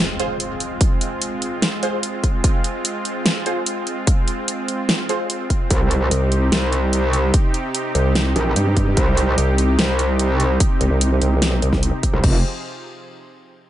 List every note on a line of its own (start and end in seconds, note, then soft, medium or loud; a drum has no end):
0.00 5.67 G#3 medium
0.00 12.20 C4 medium
0.00 5.67 F4 medium
0.00 impact medium
0.20 0.36 F4 medium
0.20 0.36 G#4 medium
0.20 0.36 C5 medium
0.20 closed hi-hat medium
0.40 closed hi-hat medium
0.60 closed hi-hat medium
0.81 kick loud
0.81 closed hi-hat medium
1.01 closed hi-hat medium
1.22 closed hi-hat medium
1.42 closed hi-hat medium
1.62 snare loud
1.62 closed hi-hat medium
1.83 1.99 F4 medium
1.83 1.99 G#4 medium
1.83 1.99 C5 medium
1.83 closed hi-hat medium
2.03 closed hi-hat medium
2.24 kick medium
2.24 closed hi-hat medium
2.44 kick loud
2.44 closed hi-hat medium
2.64 closed hi-hat medium
2.85 closed hi-hat medium
3.05 closed hi-hat medium
3.26 snare loud
3.26 closed hi-hat medium
3.46 3.62 F4 medium
3.46 3.62 G#4 medium
3.46 3.62 C5 medium
3.46 closed hi-hat medium
3.66 closed hi-hat medium
3.87 closed hi-hat medium
4.07 kick loud
4.07 closed hi-hat medium
4.28 closed hi-hat medium
4.48 closed hi-hat medium
4.68 closed hi-hat medium
4.89 snare loud
4.89 closed hi-hat medium
5.09 5.26 F4 medium
5.09 5.26 G#4 medium
5.09 5.26 C5 medium
5.09 closed hi-hat soft
5.30 closed hi-hat medium
5.50 kick medium
5.50 closed hi-hat soft
5.71 6.10 C2 medium
5.71 12.20 C3 medium
5.71 12.20 D#4 medium
5.71 12.20 G4 medium
5.71 kick loud
5.71 closed hi-hat medium
5.91 closed hi-hat medium
6.11 6.51 C2 medium
6.11 closed hi-hat medium
6.32 closed hi-hat medium
6.52 7.32 C2 loud
6.52 snare loud
6.52 closed hi-hat medium
6.73 closed hi-hat soft
6.93 closed hi-hat medium
7.13 closed hi-hat soft
7.34 kick loud
7.34 closed hi-hat medium
7.54 closed hi-hat medium
7.75 closed hi-hat medium
7.95 8.34 C2 loud
7.95 closed hi-hat soft
8.15 snare loud
8.15 closed hi-hat medium
8.36 8.55 A#1 medium
8.36 closed hi-hat soft
8.56 8.95 G2 medium
8.56 closed hi-hat medium
8.77 kick medium
8.77 closed hi-hat medium
8.97 9.36 C2 medium
8.97 kick loud
8.97 closed hi-hat medium
9.17 closed hi-hat medium
9.38 9.77 C2 medium
9.38 closed hi-hat medium
9.58 closed hi-hat medium
9.79 10.59 C2 medium
9.79 snare loud
9.79 closed hi-hat medium
9.99 closed hi-hat medium
10.19 closed hi-hat medium
10.40 closed hi-hat medium
10.60 kick loud
10.60 closed hi-hat medium
10.81 10.89 C2 loud
10.81 closed hi-hat medium
10.91 11.20 C2 loud
11.01 closed hi-hat medium
11.22 11.61 C2 loud
11.22 closed hi-hat medium
11.42 snare loud
11.42 closed hi-hat medium
11.62 11.91 C2 medium
11.62 closed hi-hat medium
11.73 kick medium
11.73 snare soft
11.83 closed hi-hat medium
12.03 kick medium
12.03 closed hi-hat medium
12.14 12.22 C2 loud
12.24 12.43 F1 medium
12.24 12.43 F3 medium
12.24 12.43 F4 medium
12.24 12.43 G#4 medium
12.24 12.43 C5 medium
12.24 kick loud
12.24 crash medium